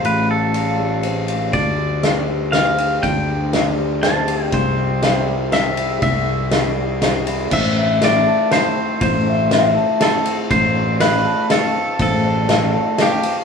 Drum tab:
CC |------|------|------|------|
RD |x-x-xx|x-x-xx|x-x-xx|x-x-xx|
SD |------|--o-o-|--o-o-|--o-o-|
BD |------|o-----|o-----|o-----|

CC |------|x-----|------|------|
RD |x-x-xx|--x-x-|x-x-xx|x-x-x-|
SD |--o-o-|--o-o-|--o-o-|--o-o-|
BD |o-----|o-----|o-----|o-----|

CC |------|
RD |x-x-xx|
SD |--o-o-|
BD |o-----|